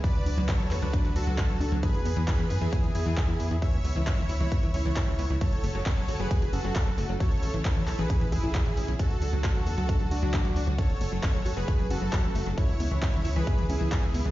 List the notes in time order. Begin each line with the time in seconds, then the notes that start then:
Already playing: B3
0.04 D3 F#3 F#4 B4 D5, kick, closed hi-hat
0.15 D2, closed hi-hat
0.26 D2 D4, open hi-hat
0.37 D2 F#3, closed hi-hat
0.49 F#4 A4 C#5, kick, clap, closed hi-hat
0.60 D2 F#3, closed hi-hat
0.71 E2 B4, clap, open hi-hat
0.82 D2 F#3 D4 B4, closed hi-hat
0.93 D4, kick, closed hi-hat
1.05 D2 F#3, closed hi-hat
1.16 D2 F#4 A4, open hi-hat
1.27 D2 F#3
1.38 B4, kick, clap, closed hi-hat
1.49 D2 F#3, closed hi-hat
1.61 D2 D4, open hi-hat
1.72 D2 F#3, closed hi-hat
1.83 E3 G#4 B4, kick, closed hi-hat
1.94 E2, closed hi-hat
2.05 E2 B3, open hi-hat
2.17 E2 E3, closed hi-hat
2.28 E4 G#4 B4, kick, clap, closed hi-hat
2.39 E2 E3, closed hi-hat
2.50 F#2 G#4, open hi-hat
2.61 E2 E3 E4 G#4, closed hi-hat
2.73 B3, kick, closed hi-hat
2.84 E2 E3, closed hi-hat
2.95 E2 E4 G#4, open hi-hat
3.06 E2 E3, closed hi-hat
3.17 G#4, kick, clap, closed hi-hat
3.28 E2 E3, closed hi-hat
3.40 E2 B3, open hi-hat
3.51 E2 E3, closed hi-hat
3.62 C#3 E3 E4 C#5 E5, kick, closed hi-hat
3.73 C#2, closed hi-hat
3.84 C#2 B3, open hi-hat
3.96 C#2 E3, closed hi-hat
4.07 C#4 C#5 E5, kick, clap, closed hi-hat
4.18 C#2 E3, closed hi-hat
4.29 D2 E4, open hi-hat
4.40 C#2 E3 E4 C#5
4.52 B3, kick, closed hi-hat
4.63 C#2 E3, closed hi-hat
4.74 C#2 C#4 E4 C#5, open hi-hat
4.85 C#2 E3, closed hi-hat
4.96 E4, kick, clap, closed hi-hat
5.08 C#2 E3, closed hi-hat
5.19 C#2 B3, open hi-hat
5.30 C#2 E3, closed hi-hat
5.41 F#3 A3 F#4 A4 C#5, kick, closed hi-hat
5.52 F#1, closed hi-hat
5.64 F#1 A3, open hi-hat
5.75 F#1 F#3, closed hi-hat
5.86 C#4 A4 C#5, kick, clap, closed hi-hat
5.97 F#1 F#3, closed hi-hat
6.08 G#1 F#4, open hi-hat
6.19 F#1 F#3 G#4 B4, closed hi-hat
6.31 A3, kick, closed hi-hat
6.42 F#1 F#3, closed hi-hat
6.53 F#1 C#4 F#4 A4, open hi-hat
6.64 F#1 F#3, closed hi-hat
6.76 F#4, kick, clap, closed hi-hat
6.87 F#1 F#3, closed hi-hat
6.98 F#1 A3, open hi-hat
7.09 F#1 F#3, closed hi-hat
7.20 E3 E4 A4 C#5, kick, closed hi-hat
7.31 A1, closed hi-hat
7.43 A1 C#4, open hi-hat
7.54 A1 E3, closed hi-hat
7.65 E4 A4 C#5, kick, clap, closed hi-hat
7.76 A1 E3, closed hi-hat
7.87 B1 A4, clap, open hi-hat
7.99 A1 E3 G#4 B4, closed hi-hat
8.10 C#4, kick, closed hi-hat
8.21 A2 E3, closed hi-hat
8.32 A1 E4 G#4 A4, kick, open hi-hat
8.43 A1 E4, closed hi-hat
8.55 E3, kick, clap, closed hi-hat
8.66 A2 E3, closed hi-hat
8.77 A1 C#4, open hi-hat
8.88 B1 C#4, closed hi-hat
8.99 D3 F#3 A3 F#4 A4, kick, closed hi-hat
9.10 D2, closed hi-hat
9.22 D2 D4, open hi-hat
9.33 D2 F#3, closed hi-hat
9.44 F#4 A4, kick, clap, closed hi-hat
9.55 D2 F#3, closed hi-hat
9.66 E2 A4, open hi-hat
9.78 D2 F#3 F#4 A4, closed hi-hat
9.89 D4, kick, closed hi-hat
10.00 D2 F#3, closed hi-hat
10.11 D2 D4 F#4, open hi-hat
10.22 D2 F#3, closed hi-hat
10.34 A4, kick, clap, closed hi-hat
10.45 D2 F#3, closed hi-hat
10.56 D2 D4, open hi-hat
10.67 D2 F#3
10.78 C#3 F#3 A4 C#5, kick, closed hi-hat
10.90 F#1, closed hi-hat
11.01 F#1 A3, open hi-hat
11.12 F#1 F#3, closed hi-hat
11.23 C#4 A4 C#5, kick, clap, closed hi-hat
11.34 F#1 F#3, closed hi-hat
11.45 G#1 F#4, open hi-hat
11.57 F#1 F#3 G#4 B4, closed hi-hat
11.68 A3, kick, closed hi-hat
11.79 F#1 F#3, closed hi-hat
11.90 F#1 C#4 F#4 A4, open hi-hat
12.02 F#1 F#3, closed hi-hat
12.13 F#4, kick, clap, closed hi-hat
12.24 F#1 F#3, closed hi-hat
12.35 F#1 A3, open hi-hat
12.46 F#1 F#3
12.58 E3 G#3 B3 E4 C#5, kick, closed hi-hat
12.69 C#2, closed hi-hat
12.80 C#2 B3, open hi-hat
12.91 C#2 E3, closed hi-hat
13.02 C#4 E4 C#5, kick, clap, closed hi-hat
13.14 C#2 E3, closed hi-hat
13.25 D2 E4, open hi-hat
13.36 C#2 E3 G#4 B4, closed hi-hat
13.47 B3, kick, closed hi-hat
13.58 C#2 E3, closed hi-hat
13.69 C#2 C#4 E4 G#4, open hi-hat
13.81 C#2 E3, closed hi-hat
13.92 E4, kick, clap, closed hi-hat
14.03 C#2 E3, closed hi-hat
14.14 C#2 B3, open hi-hat
14.25 C#2 E3